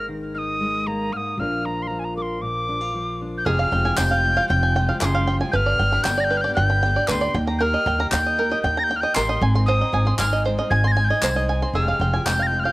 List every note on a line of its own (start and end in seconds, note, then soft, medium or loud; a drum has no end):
0.00 1.08 G#1 medium
0.00 1.09 G#2 medium
0.00 0.59 G#3 medium
0.00 0.86 A#3 soft
0.00 0.34 D#4 medium
0.00 1.09 A#4 soft
0.09 1.09 D#3 soft
0.34 1.09 D#4 medium
0.34 0.88 D#6 medium
0.34 0.39 F6 medium
0.60 1.09 G#3 medium
0.87 1.39 A#3 medium
0.87 1.14 A#5 medium
1.13 1.35 G#2 medium
1.13 1.18 F6 medium
1.17 1.41 D#6 medium
1.38 3.42 A#1 medium
1.38 2.41 A#2 medium
1.38 1.89 F3 medium
1.38 2.67 D4 medium
1.38 1.65 F4 medium
1.38 2.16 A#4 medium
1.38 1.67 F6 medium
1.65 2.68 F4 soft
1.65 1.83 A#5 medium
1.82 1.88 C6 medium
1.87 2.93 F3 soft
1.87 2.00 A#5 medium
1.99 2.05 G#5 medium
2.04 2.17 A#5 medium
2.17 3.43 A#4 medium
2.17 2.23 D6 medium
2.22 2.43 C6 medium
2.42 3.43 A#2 medium
2.42 3.20 D6 medium
2.69 2.81 D4 soft
2.81 3.46 F4 soft
2.94 5.53 F3 medium
3.21 3.43 D4 soft
3.38 3.47 G6 medium
3.45 3.66 F1 loud
3.45 3.71 F2 medium
3.45 3.72 C3 medium
3.45 3.70 F3 medium
3.45 3.71 G#3 medium
3.45 3.72 F4 medium
3.45 3.72 G4 loud
3.45 3.98 G#4 medium
3.45 3.98 F6 loud
3.59 4.10 F5 medium
3.71 3.92 F1 loud
3.71 3.84 F3 medium
3.71 3.85 G#3 medium
3.71 3.84 F4 medium
3.71 3.83 G4 medium
3.71 3.97 G5 medium
3.84 3.97 F3 soft
3.84 3.98 G#3 soft
3.84 3.98 F4 soft
3.84 3.98 G4 medium
3.84 4.37 G#5 medium
3.97 4.37 F1 medium
3.97 4.23 F2 medium
3.97 4.24 C3 medium
3.97 4.21 F3 medium
3.97 4.22 G#3 loud
3.97 4.23 F4 medium
3.97 4.24 G4 medium
3.97 4.49 G5 medium
3.97 4.48 G6 loud
3.97 clap loud
3.97 tambourine loud
4.11 4.36 F5 medium
4.23 4.36 F3 medium
4.23 4.36 G#3 medium
4.23 4.36 F4 medium
4.23 4.34 G4 medium
4.36 4.74 F3 medium
4.36 4.75 G#3 medium
4.36 4.76 F4 medium
4.36 4.75 G4 medium
4.36 4.88 F5 medium
4.49 4.89 F1 loud
4.49 4.75 G5 loud
4.49 4.97 G6 loud
4.63 5.14 G#5 medium
4.75 4.88 F3 medium
4.75 4.89 G#3 medium
4.75 4.88 F4 medium
4.75 4.87 G4 medium
4.75 5.26 G5 medium
4.88 5.02 F3 soft
4.88 5.02 G#3 medium
4.88 5.02 F4 soft
4.88 5.01 G4 soft
4.88 5.13 F5 medium
5.00 5.41 F#1 loud
5.00 5.14 F2 medium
5.00 5.15 C3 medium
5.00 5.15 F3 medium
5.00 5.15 G#3 loud
5.00 5.14 F4 medium
5.00 5.13 G4 loud
5.00 5.53 G#4 medium
5.00 5.06 D6 medium
5.00 clap loud
5.00 tambourine loud
5.05 5.37 C6 medium
5.14 5.26 F3 soft
5.14 5.27 G#3 soft
5.14 5.28 F4 medium
5.14 5.27 G4 medium
5.14 5.53 F5 medium
5.27 5.40 F3 medium
5.27 5.40 G#3 medium
5.27 5.40 F4 medium
5.27 5.39 G4 medium
5.27 5.53 G5 medium
5.40 5.54 F3 soft
5.40 5.54 G#3 soft
5.40 5.54 F4 soft
5.40 5.53 G4 medium
5.40 5.53 G#5 medium
5.52 5.73 G1 loud
5.52 5.79 G2 medium
5.52 5.80 D3 medium
5.52 5.78 G3 medium
5.52 5.80 B3 medium
5.52 5.80 D4 medium
5.52 5.80 G4 loud
5.52 6.05 B4 loud
5.52 5.57 G6 loud
5.56 6.05 F6 loud
5.66 6.16 D5 medium
5.79 5.99 G1 loud
5.79 5.92 G3 medium
5.79 5.93 B3 medium
5.79 5.93 D4 medium
5.79 5.92 G4 medium
5.79 6.04 G5 medium
5.92 6.06 G3 soft
5.92 6.06 B3 soft
5.92 6.06 D4 medium
5.92 6.06 G4 medium
5.92 6.44 B5 medium
6.03 6.45 G1 medium
6.03 6.32 G2 medium
6.03 6.55 G5 medium
6.03 6.21 G6 loud
6.03 clap medium
6.03 tambourine medium
6.07 6.32 D3 medium
6.07 6.30 G3 medium
6.07 6.31 B3 medium
6.07 6.32 D4 loud
6.07 6.33 G4 medium
6.17 6.43 D5 medium
6.17 6.25 A#6 loud
6.24 6.38 G6 loud
6.30 6.44 G3 medium
6.30 6.44 B3 medium
6.30 6.45 D4 medium
6.30 6.44 G4 medium
6.30 6.82 B4 medium
6.37 6.42 F6 loud
6.41 6.95 D5 medium
6.41 6.54 G6 loud
6.45 6.83 G3 medium
6.45 6.83 B3 medium
6.45 6.84 D4 medium
6.45 6.83 G4 medium
6.55 6.96 G1 loud
6.55 6.81 G5 loud
6.55 6.66 F#6 loud
6.66 7.21 B5 medium
6.66 7.09 G6 loud
6.83 6.96 G3 medium
6.83 6.96 B3 medium
6.83 6.96 D4 medium
6.83 6.95 G4 medium
6.83 7.33 G5 medium
6.96 7.09 G3 soft
6.96 7.10 B3 soft
6.96 7.09 D4 soft
6.96 7.09 G4 medium
6.96 7.20 D5 medium
7.07 7.28 D2 medium
7.07 7.22 G2 medium
7.07 7.22 D3 medium
7.07 7.22 G3 medium
7.07 7.22 B3 loud
7.07 7.34 B4 medium
7.07 7.35 C6 medium
7.07 7.12 D6 medium
7.07 clap loud
7.07 tambourine medium
7.11 7.22 D4 loud
7.11 7.21 G4 loud
7.21 7.35 B3 soft
7.21 7.35 D4 medium
7.21 7.35 G4 medium
7.21 7.34 D5 medium
7.25 7.33 G3 soft
7.34 7.74 D#2 loud
7.34 7.47 G3 medium
7.34 7.48 A#3 medium
7.34 7.47 D#4 medium
7.34 7.45 G4 medium
7.34 7.86 G5 medium
7.47 7.60 A#3 soft
7.47 7.60 D#4 soft
7.47 7.60 G4 soft
7.47 7.99 A#5 medium
7.59 7.86 D#3 medium
7.59 7.85 G3 medium
7.59 7.86 A#3 medium
7.59 7.87 D#4 medium
7.59 7.87 G4 medium
7.59 8.12 A#4 loud
7.59 8.07 F6 loud
7.59 7.63 G6 loud
7.74 8.25 D#5 medium
7.86 8.06 D#2 loud
7.86 7.99 G3 medium
7.86 7.99 A#3 medium
7.86 7.99 D#4 medium
7.86 7.97 G4 medium
7.86 8.12 G5 medium
7.99 8.12 A#3 medium
7.99 8.12 D#4 medium
7.99 8.12 G4 medium
7.99 8.51 A#5 medium
8.11 8.51 D#2 medium
8.11 8.38 D#3 medium
8.11 8.35 G3 medium
8.11 8.37 A#3 medium
8.11 8.37 D#4 medium
8.11 8.38 G4 loud
8.11 8.63 G5 medium
8.11 8.59 G6 loud
8.11 clap loud
8.11 tambourine medium
8.26 8.50 D#5 medium
8.37 8.50 G3 medium
8.37 8.51 A#3 medium
8.37 8.50 D#4 medium
8.37 8.48 G4 medium
8.37 8.90 A#4 medium
8.50 8.87 A#3 medium
8.50 8.88 D#4 medium
8.50 8.89 G4 medium
8.50 9.02 D#5 medium
8.62 9.03 D#2 loud
8.62 8.90 G5 loud
8.62 8.80 G6 loud
8.77 9.29 A#5 medium
8.77 8.85 A#6 loud
8.84 9.01 G3 medium
8.84 8.97 G6 loud
8.89 9.02 A#3 medium
8.89 9.03 D#4 medium
8.89 9.01 G4 medium
8.89 9.42 G5 medium
8.96 9.02 F6 loud
9.01 9.14 A#3 soft
9.01 9.15 D#4 medium
9.01 9.15 G4 medium
9.01 9.28 D#5 medium
9.01 9.16 G6 loud
9.14 9.36 A1 medium
9.14 9.28 D#3 medium
9.14 9.28 G3 medium
9.14 9.29 A#3 medium
9.14 9.29 D#4 medium
9.14 9.27 G4 loud
9.14 9.42 A#4 medium
9.14 9.54 C6 medium
9.14 clap loud
9.14 tambourine loud
9.28 9.41 A#3 soft
9.28 9.41 D#4 medium
9.28 9.41 G4 medium
9.28 9.42 D#5 medium
9.40 9.81 G#1 loud
9.40 9.54 G#3 medium
9.40 9.54 C4 medium
9.40 9.54 D#4 medium
9.40 9.53 G#4 medium
9.40 9.93 G#5 medium
9.54 9.66 G#3 soft
9.54 9.67 C4 soft
9.54 9.67 D#4 medium
9.54 9.67 G#4 medium
9.54 10.06 C6 medium
9.66 9.93 G#2 medium
9.66 9.93 D#3 medium
9.66 9.91 G#3 medium
9.66 9.92 C4 medium
9.66 9.93 D#4 loud
9.66 9.94 G#4 medium
9.66 10.20 C5 loud
9.66 10.15 D#6 loud
9.81 10.32 D#5 medium
9.92 10.13 G#1 loud
9.92 10.06 G#3 medium
9.92 10.06 C4 medium
9.92 10.05 D#4 medium
9.92 10.04 G#4 medium
9.92 10.19 G#5 medium
10.05 10.18 G#3 soft
10.05 10.18 C4 soft
10.05 10.19 D#4 medium
10.05 10.19 G#4 medium
10.05 10.58 C6 medium
10.18 10.58 G#1 medium
10.18 10.44 G#2 medium
10.18 10.44 D#3 medium
10.18 10.43 G#3 medium
10.18 10.45 C4 medium
10.18 10.45 D#4 medium
10.18 10.45 G#4 medium
10.18 10.70 G#5 medium
10.18 10.43 F6 medium
10.18 clap loud
10.18 tambourine loud
10.33 10.57 D#5 medium
10.44 10.58 G#3 medium
10.44 10.58 C4 medium
10.44 10.57 D#4 medium
10.44 10.56 G#4 medium
10.44 10.97 C5 medium
10.58 10.96 G#3 soft
10.58 10.97 C4 medium
10.58 10.97 D#4 medium
10.58 10.97 G#4 medium
10.58 11.09 D#5 medium
10.70 11.10 G#1 loud
10.70 10.95 G#5 loud
10.70 10.88 G#6 loud
10.84 11.36 C6 medium
10.84 10.93 A#6 loud
10.92 11.05 G#6 loud
10.97 11.10 G#3 medium
10.97 11.10 C4 medium
10.97 11.10 D#4 medium
10.97 11.08 G#4 medium
10.97 11.48 G#5 medium
11.04 11.10 G6 loud
11.09 11.23 G#3 soft
11.09 11.23 C4 soft
11.09 11.23 D#4 medium
11.09 11.23 G#4 medium
11.09 11.35 D#5 medium
11.09 11.44 G#6 loud
11.22 11.62 C2 loud
11.22 11.36 G#2 medium
11.22 11.36 D#3 medium
11.22 11.36 G#3 medium
11.22 11.37 C4 medium
11.22 11.36 D#4 medium
11.22 11.34 G#4 loud
11.22 11.75 C5 medium
11.22 clap loud
11.22 tambourine loud
11.36 11.47 G#3 soft
11.36 11.48 C4 medium
11.36 11.49 D#4 medium
11.36 11.49 G#4 medium
11.36 11.75 D#5 medium
11.48 11.61 G#3 medium
11.48 11.62 C4 medium
11.48 11.62 D#4 medium
11.48 11.61 G#4 medium
11.48 11.75 G#5 medium
11.62 11.75 G#3 soft
11.62 11.76 C4 soft
11.62 11.75 D#4 soft
11.62 11.75 G#4 soft
11.62 11.75 C6 medium
11.73 11.94 F1 medium
11.73 12.00 F2 medium
11.73 12.01 C3 medium
11.73 11.99 F3 medium
11.73 12.01 G#3 medium
11.73 12.01 F4 medium
11.73 12.01 G4 medium
11.73 12.27 G#4 medium
11.73 12.27 F6 loud
11.88 12.38 F5 medium
12.00 12.20 F1 loud
12.00 12.13 F3 medium
12.00 12.14 G#3 medium
12.00 12.14 F4 medium
12.00 12.13 G4 medium
12.00 12.25 G5 medium
12.14 12.26 F3 soft
12.14 12.26 G#3 medium
12.14 12.26 F4 medium
12.14 12.27 G4 medium
12.14 12.65 G#5 medium
12.26 12.66 F1 medium
12.26 12.52 F2 medium
12.26 12.52 C3 medium
12.26 12.49 F3 medium
12.26 12.50 G#3 medium
12.26 12.51 F4 medium
12.26 12.53 G4 medium
12.26 12.72 G5 loud
12.26 12.44 G6 loud
12.26 clap loud
12.26 tambourine loud
12.39 12.64 F5 medium
12.39 12.48 A#6 medium
12.47 12.64 F3 medium
12.47 12.61 G6 loud
12.52 12.65 G#3 medium
12.52 12.64 F4 medium
12.52 12.63 G4 medium
12.60 12.65 F6 medium
12.64 12.72 F3 soft
12.64 12.72 G#3 medium
12.64 12.72 F4 medium
12.64 12.72 G4 medium
12.64 12.72 F5 medium
12.64 12.72 G6 loud